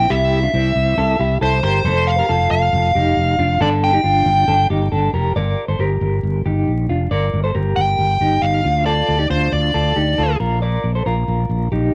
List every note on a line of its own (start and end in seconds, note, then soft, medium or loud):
0.00 0.10 C4 soft
0.00 0.11 G5 loud
0.10 0.46 C2 loud
0.10 0.41 E4 medium
0.10 0.41 G4 loud
0.10 1.37 E5 loud
0.43 0.54 D4 medium
0.43 0.53 F4 medium
0.54 0.71 C2 loud
0.54 0.95 C4 medium
0.54 0.95 E4 medium
0.75 0.93 C2 loud
0.97 1.15 C2 loud
0.97 1.19 E4 medium
0.97 1.19 A4 medium
1.19 1.37 C2 medium
1.19 1.41 E4 medium
1.19 1.41 G4 medium
1.41 1.59 C2 medium
1.41 1.64 E4 medium
1.41 1.63 A4 medium
1.41 1.63 C5 medium
1.63 1.81 G1 medium
1.63 1.85 G4 medium
1.63 1.85 A#4 medium
1.63 2.09 C5 medium
1.84 2.21 F1 loud
1.84 2.16 A4 medium
1.84 2.16 C5 loud
2.07 2.50 F5 loud
2.18 2.29 G4 medium
2.18 2.29 A#4 medium
2.29 2.47 F1 medium
2.29 2.91 F4 medium
2.29 2.91 A4 medium
2.51 2.69 F1 loud
2.51 3.61 F5 loud
2.73 2.91 F1 loud
2.95 3.13 F1 loud
2.95 3.36 D#4 medium
2.95 3.36 G4 medium
3.17 3.35 F1 medium
3.38 3.56 F1 medium
3.38 3.60 D4 medium
3.38 3.60 F4 medium
3.60 3.96 G1 loud
3.60 3.92 D4 medium
3.60 3.91 A4 loud
3.60 3.68 D5 medium
3.84 4.66 G5 medium
3.93 4.04 D#4 medium
3.93 4.03 G4 medium
4.04 4.22 G1 loud
4.04 4.45 D4 medium
4.04 4.45 F4 medium
4.26 4.44 G1 loud
4.48 4.66 G1 loud
4.48 4.70 D4 medium
4.48 4.70 A4 medium
4.70 4.88 G1 loud
4.70 4.92 D#4 soft
4.70 4.91 G4 medium
4.92 5.10 G1 loud
4.92 5.14 D4 medium
4.92 5.13 A4 medium
5.13 5.31 F1 medium
5.13 5.36 G4 medium
5.13 5.36 A#4 medium
5.36 5.54 G1 medium
5.36 5.67 A#4 medium
5.36 5.67 D5 loud
5.68 5.77 G1 loud
5.68 5.79 A4 medium
5.68 5.79 C5 medium
5.79 5.97 G1 medium
5.79 6.42 G4 medium
5.79 6.41 A#4 medium
6.01 6.19 G1 loud
6.23 6.41 G1 medium
6.46 6.63 G1 loud
6.46 6.87 D#4 soft
6.46 6.87 G4 medium
6.67 6.85 A#1 medium
6.89 7.07 F1 medium
6.89 7.11 D4 soft
6.89 7.11 F4 medium
7.11 7.29 G1 medium
7.11 7.42 A#4 medium
7.11 7.42 D5 loud
7.33 7.51 G1 medium
7.44 7.54 A4 medium
7.44 7.55 C5 medium
7.55 7.73 G1 medium
7.55 8.17 G4 medium
7.55 8.17 A#4 medium
7.76 7.95 G1 loud
7.76 8.44 G5 medium
7.98 8.17 G1 medium
8.21 8.39 G1 medium
8.21 8.62 D#4 soft
8.21 8.62 G4 medium
8.42 8.60 G1 medium
8.42 8.83 F5 medium
8.64 9.01 D2 medium
8.64 8.87 D4 medium
8.64 8.86 F4 medium
8.86 9.18 F4 medium
8.86 9.17 A4 loud
8.86 9.27 D5 medium
9.09 9.26 D2 medium
9.19 9.30 D#4 medium
9.19 9.29 G4 medium
9.30 9.48 D2 loud
9.30 9.72 D4 medium
9.30 9.71 F4 medium
9.30 9.51 C5 medium
9.52 9.70 D2 loud
9.52 10.36 D5 medium
9.74 9.92 D2 loud
9.74 9.96 F4 medium
9.74 9.96 A4 medium
9.96 10.14 D2 medium
9.96 10.18 D#4 soft
9.96 10.18 G4 medium
10.18 10.36 D2 medium
10.18 10.40 F4 medium
10.18 10.40 A4 medium
10.40 10.76 A#1 medium
10.40 10.62 F4 medium
10.40 10.62 A#4 medium
10.62 10.93 A#4 medium
10.62 10.93 D5 medium
10.84 11.02 A#1 medium
10.95 11.06 A4 medium
10.95 11.06 C5 medium
11.06 11.24 A#1 medium
11.06 11.68 F4 medium
11.06 11.68 A#4 medium
11.28 11.46 A#1 loud
11.50 11.68 A#1 loud
11.72 11.90 A#1 medium
11.72 11.94 D#4 medium
11.72 11.94 G4 medium